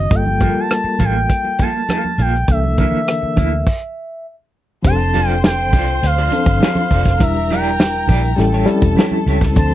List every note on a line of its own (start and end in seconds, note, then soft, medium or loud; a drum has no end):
0.00 0.13 D#3 medium
0.00 0.12 C4 medium
0.00 0.13 D4 medium
0.00 0.13 F#4 medium
0.00 0.17 D#5 medium
0.10 0.50 G1 medium
0.10 0.34 G3 medium
0.10 0.34 A#3 medium
0.10 0.35 F4 soft
0.10 0.35 A4 medium
0.10 kick loud
0.10 closed hi-hat medium
0.10 low conga medium
0.15 0.61 G5 loud
0.26 muted conga soft
0.26 high conga medium
0.40 1.35 G3 medium
0.40 0.60 A#3 medium
0.40 1.36 A#3 medium
0.40 0.60 F4 medium
0.40 1.36 F4 medium
0.40 0.61 A4 medium
0.40 0.48 A4 medium
0.40 kick medium
0.40 closed hi-hat medium
0.40 high conga medium
0.49 1.40 A#4 medium
0.55 muted fingered electric bass stroke soft
0.60 1.06 A5 loud
0.70 muted clean electric guitar stroke soft
0.70 cross-stick loud
0.70 closed hi-hat medium
0.70 muted conga soft
0.84 muted fingered electric bass stroke soft
0.84 muted clean electric guitar stroke soft
0.84 muted conga soft
0.99 1.26 A1 medium
0.99 1.19 A#3 medium
0.99 1.15 F4 medium
0.99 1.14 A4 medium
0.99 kick medium
0.99 closed hi-hat medium
0.99 high conga medium
0.99 low conga medium
1.05 1.64 G5 loud
1.15 muted clean electric guitar stroke soft
1.29 kick medium
1.29 closed hi-hat medium
1.29 muted conga soft
1.44 muted clean electric guitar stroke soft
1.44 muted conga soft
1.59 1.79 A#3 medium
1.59 1.74 F4 medium
1.59 1.73 A4 medium
1.59 kick medium
1.59 closed hi-hat medium
1.59 high conga medium
1.63 2.23 A5 medium
1.74 muted clean electric guitar stroke soft
1.88 2.09 A#3 medium
1.88 2.04 F4 medium
1.88 2.03 A4 medium
1.88 cross-stick loud
1.88 closed hi-hat medium
1.88 muted conga soft
1.88 high conga medium
2.04 muted clean electric guitar stroke soft
2.04 high conga medium
2.18 2.44 A#1 medium
2.18 2.34 A#3 medium
2.18 2.34 F4 medium
2.18 2.32 A4 medium
2.18 2.52 G5 medium
2.18 closed hi-hat medium
2.18 low conga medium
2.34 muted clean electric guitar stroke soft
2.34 cross-stick soft
2.48 2.86 C2 loud
2.48 2.71 E3 medium
2.48 2.72 A#3 medium
2.48 2.72 D4 soft
2.48 2.73 A4 medium
2.48 4.27 E5 medium
2.48 kick medium
2.48 closed hi-hat medium
2.48 muted conga soft
2.48 low conga medium
2.64 muted conga soft
2.64 high conga medium
2.77 2.83 D3 soft
2.77 3.66 A#3 medium
2.77 2.98 A#3 medium
2.77 3.66 D4 medium
2.77 2.98 E4 medium
2.77 2.98 A4 medium
2.77 3.67 A#4 medium
2.77 kick medium
2.77 closed hi-hat medium
2.77 high conga medium
2.84 3.69 E3 medium
2.92 muted fingered electric bass stroke soft
3.08 muted clean electric guitar stroke soft
3.08 cross-stick loud
3.08 closed hi-hat loud
3.08 muted conga soft
3.22 muted clean electric guitar stroke soft
3.22 muted fingered electric bass stroke soft
3.22 muted conga soft
3.36 3.62 D2 medium
3.36 3.56 A#3 medium
3.36 3.52 E4 medium
3.36 3.51 A4 medium
3.36 kick medium
3.36 closed hi-hat medium
3.36 high conga medium
3.36 low conga medium
3.52 muted clean electric guitar stroke soft
3.67 kick loud
3.67 crash medium
4.82 5.73 F1 medium
4.82 5.78 F3 medium
4.82 5.79 C4 medium
4.82 5.79 D4 medium
4.82 4.91 G4 medium
4.82 7.17 C5 medium
4.82 5.28 A5 loud
4.82 7.17 C6 medium
4.82 kick loud
4.82 closed hi-hat medium
4.82 muted conga soft
4.82 low conga medium
4.92 5.83 A4 medium
4.98 closed hi-hat soft
5.14 5.33 F4 medium
5.14 5.34 A4 medium
5.14 5.34 D5 medium
5.14 closed hi-hat medium
5.14 high conga medium
5.28 5.40 G5 loud
5.28 closed hi-hat soft
5.44 6.07 G5 loud
5.44 muted clean electric guitar stroke soft
5.44 snare loud
5.44 muted conga soft
5.58 muted clean electric guitar stroke medium
5.58 muted conga soft
5.73 5.99 C2 medium
5.73 5.93 F4 medium
5.73 5.89 A4 medium
5.73 5.89 D5 medium
5.73 kick medium
5.73 closed hi-hat medium
5.73 high conga medium
5.73 low conga medium
5.88 closed hi-hat medium
6.03 6.28 D2 medium
6.03 7.24 F5 loud
6.03 muted clean electric guitar stroke soft
6.03 snare soft
6.03 closed hi-hat medium
6.18 6.32 F4 medium
6.18 6.32 A4 medium
6.18 6.33 D5 medium
6.18 muted conga soft
6.31 7.02 F3 medium
6.31 7.03 C4 medium
6.31 7.03 D4 medium
6.31 7.03 A4 medium
6.31 muted clean electric guitar stroke soft
6.31 closed hi-hat medium
6.31 high conga medium
6.46 6.59 G1 medium
6.46 muted clean electric guitar stroke soft
6.46 kick loud
6.46 closed hi-hat soft
6.60 6.81 F4 medium
6.60 6.78 A4 medium
6.60 6.77 D5 medium
6.60 snare loud
6.60 muted conga soft
6.60 high conga medium
6.75 muted clean electric guitar stroke soft
6.75 closed hi-hat soft
6.75 muted conga soft
6.75 high conga medium
6.91 7.21 F1 medium
6.91 7.07 F4 medium
6.91 7.07 A4 medium
6.91 7.06 D5 medium
6.91 kick medium
6.91 closed hi-hat medium
7.05 muted clean electric guitar stroke soft
7.05 kick medium
7.05 snare soft
7.05 closed hi-hat medium
7.19 8.05 E1 medium
7.19 8.15 G3 medium
7.19 8.15 D4 medium
7.19 8.15 E4 medium
7.19 8.36 A#4 medium
7.19 8.16 A#4 medium
7.19 7.51 E5 loud
7.19 8.36 A#5 medium
7.19 kick loud
7.19 closed hi-hat medium
7.19 muted conga soft
7.19 low conga medium
7.35 muted conga soft
7.50 7.70 E4 medium
7.50 7.70 G4 medium
7.50 7.71 D5 medium
7.50 8.65 G5 medium
7.50 closed hi-hat medium
7.50 high conga medium
7.65 closed hi-hat soft
7.79 muted clean electric guitar stroke soft
7.79 snare loud
7.79 muted conga soft
7.94 muted clean electric guitar stroke soft
7.94 closed hi-hat soft
7.94 muted conga soft
8.07 8.35 A#1 medium
8.07 8.28 E4 medium
8.07 8.23 G4 medium
8.07 8.22 D5 medium
8.07 kick medium
8.07 open hi-hat soft
8.07 high conga medium
8.07 low conga medium
8.23 muted clean electric guitar stroke soft
8.23 closed hi-hat soft
8.36 8.64 A1 medium
8.36 8.61 G3 medium
8.36 8.61 C#4 medium
8.36 8.62 E4 medium
8.36 9.54 A4 medium
8.36 8.63 A4 loud
8.36 9.54 A5 medium
8.36 muted clean electric guitar stroke soft
8.36 snare soft
8.36 closed hi-hat medium
8.53 8.67 E4 medium
8.53 8.68 G4 medium
8.53 8.68 C#5 medium
8.53 closed hi-hat soft
8.53 muted conga soft
8.66 9.38 G3 medium
8.66 8.74 C4 medium
8.66 9.39 E4 medium
8.66 9.39 A4 medium
8.66 muted clean electric guitar stroke soft
8.66 closed hi-hat medium
8.66 high conga medium
8.73 9.41 C#4 medium
8.82 8.95 E1 medium
8.82 muted clean electric guitar stroke soft
8.82 kick medium
8.82 closed hi-hat soft
8.96 9.17 E4 medium
8.96 9.12 G4 medium
8.96 9.11 C#5 medium
8.96 snare loud
8.96 muted conga soft
8.96 high conga medium
9.11 muted clean electric guitar stroke soft
9.11 high conga medium
9.26 9.52 C#2 medium
9.26 9.42 E4 medium
9.26 9.41 G4 medium
9.26 9.40 C#5 medium
9.26 closed hi-hat medium
9.41 kick medium
9.41 snare soft
9.41 closed hi-hat medium
9.54 9.74 D2 loud
9.54 9.74 F3 medium
9.54 9.74 C4 medium
9.54 9.74 D4 medium
9.54 9.74 A4 medium
9.54 9.74 C5 medium
9.54 9.74 A5 loud
9.54 9.74 C6 medium
9.54 kick loud
9.54 closed hi-hat medium
9.54 muted conga soft
9.54 low conga medium
9.70 closed hi-hat soft
9.70 muted conga soft